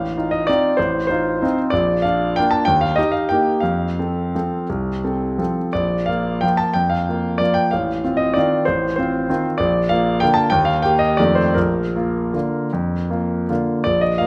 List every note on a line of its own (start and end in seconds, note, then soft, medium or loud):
0.00 0.16 A1 soft
0.00 0.32 F5 medium
0.17 0.46 D#4 soft
0.17 0.46 F4 soft
0.31 0.48 D#5 medium
0.47 0.77 C4 soft
0.47 0.77 D#4 soft
0.47 0.77 F4 soft
0.47 0.78 D5 medium
0.77 1.09 A1 soft
0.77 1.05 C5 medium
1.07 1.40 D#4 soft
1.07 1.40 F4 soft
1.07 1.58 C5 medium
1.42 1.71 C4 soft
1.42 1.71 D#4 soft
1.42 1.71 F4 soft
1.70 2.04 A#1 soft
1.70 2.03 D5 medium
2.02 2.34 D4 soft
2.02 2.34 F4 soft
2.02 2.36 F5 medium
2.36 2.66 A#3 soft
2.36 2.66 D4 soft
2.36 2.66 F4 soft
2.36 2.52 G5 medium
2.51 2.67 A5 medium
2.65 2.97 D#2 soft
2.65 2.81 G5 medium
2.81 2.97 F5 medium
2.96 3.27 D#4 soft
2.96 3.27 G4 soft
2.96 3.13 D#5 medium
3.12 3.29 F5 medium
3.29 3.61 A#3 soft
3.29 3.61 D#4 soft
3.29 3.62 G4 soft
3.29 3.63 G5 medium
3.60 3.97 F2 soft
3.60 5.56 F5 medium
3.99 4.31 C4 soft
3.99 4.31 A4 soft
4.35 4.66 F3 soft
4.35 4.67 C4 soft
4.35 4.67 A4 soft
4.69 5.03 C2 soft
5.04 5.36 C4 soft
5.04 5.36 A4 soft
5.38 5.71 F3 soft
5.38 5.71 C4 soft
5.38 5.71 A4 soft
5.73 6.08 A#1 soft
5.73 6.08 D5 medium
6.06 6.40 A#3 soft
6.06 6.39 F4 soft
6.06 6.41 F5 medium
6.41 6.72 F3 soft
6.41 6.73 A#3 soft
6.41 6.73 F4 soft
6.41 6.58 G5 medium
6.57 6.75 A5 medium
6.74 7.07 F2 soft
6.74 6.91 G5 medium
6.90 7.39 F5 medium
7.09 7.38 A#3 soft
7.09 7.38 F4 soft
7.38 7.69 F3 soft
7.38 7.69 A#3 soft
7.38 7.70 F4 soft
7.38 7.55 D5 medium
7.54 7.71 G5 medium
7.71 8.03 A1 soft
7.71 8.19 F5 medium
8.04 8.33 C4 soft
8.04 8.33 F4 soft
8.17 8.34 D#5 medium
8.34 8.64 D#3 soft
8.34 8.65 C4 soft
8.34 8.65 F4 soft
8.34 8.66 D5 medium
8.65 8.97 A1 soft
8.65 8.95 C5 medium
8.96 9.26 C4 soft
8.96 9.27 F4 soft
8.96 9.44 C5 medium
9.29 9.57 D#3 soft
9.29 9.58 C4 soft
9.29 9.58 F4 soft
9.58 9.90 A#1 medium
9.58 9.90 D5 medium
9.89 10.19 A#3 soft
9.89 10.19 F4 soft
9.89 10.21 F5 medium
10.20 10.50 D3 soft
10.20 10.50 A#3 soft
10.20 10.50 F4 soft
10.20 10.36 G5 medium
10.34 10.51 A5 medium
10.50 10.83 D#2 medium
10.50 10.67 G5 medium
10.65 10.83 F5 medium
10.82 11.16 A#3 soft
10.82 11.16 G4 soft
10.82 11.00 G5 medium
10.99 11.18 D#5 medium
11.17 11.56 F2 soft
11.17 11.53 D#3 soft
11.17 11.53 A3 soft
11.17 11.54 F4 soft
11.17 11.37 D5 medium
11.35 11.55 C5 medium
11.54 11.94 A#1 soft
11.54 13.49 A#4 medium
11.96 12.30 A#3 soft
11.96 12.30 F4 soft
12.33 12.69 D3 soft
12.33 12.69 A#3 soft
12.33 12.69 F4 soft
12.73 13.10 F2 soft
13.10 13.45 A#3 soft
13.10 13.46 F4 soft
13.49 13.83 D3 soft
13.49 13.83 A#3 soft
13.49 13.83 F4 soft
13.84 14.19 A#1 soft
13.84 14.02 D5 medium
14.01 14.19 D#5 medium
14.18 14.27 A#3 soft
14.18 14.27 F4 soft
14.18 14.27 F5 medium